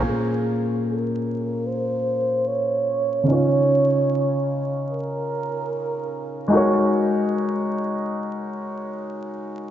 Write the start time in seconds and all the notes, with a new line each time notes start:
Already playing: C#5 A#5
0.00 A#2 A#3 C#4
0.05 G#4 A#4
0.86 A#4
1.67 C5
2.47 C#5
3.23 C#3 C#4
3.28 D#4 F4 C#5
3.32 C#5
4.91 A#4
6.48 G#3 D#4
6.52 F#4 A#4
6.57 C#5